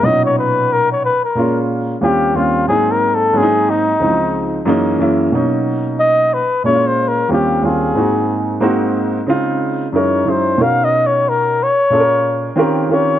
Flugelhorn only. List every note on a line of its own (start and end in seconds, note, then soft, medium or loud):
0.05 0.25 D#5 loud
0.25 0.37 C#5 medium
0.38 0.74 B4 loud
0.72 0.91 A#4 loud
0.92 1.03 C#5 medium
1.05 1.24 B4 loud
1.25 1.59 A#4 medium
2.04 2.37 G4 loud
2.36 2.68 F4 loud
2.68 2.93 G#4 loud
2.92 3.16 A#4 loud
3.15 3.39 A4 loud
3.37 3.71 G#4 loud
3.70 4.68 D#4 medium
6.00 6.35 D#5 loud
6.34 6.64 B4 medium
6.65 6.88 C#5 loud
6.87 7.10 C5 medium
7.08 7.30 A#4 medium
7.33 7.67 G4 medium
7.65 8.63 G#4 medium
9.96 10.31 C#5 medium
10.30 10.64 C5 medium
10.62 10.86 F5 loud
10.84 11.08 D#5 loud
11.06 11.30 C#5 medium
11.29 11.65 A#4 loud
11.63 12.60 C#5 loud
12.93 13.19 C#5 loud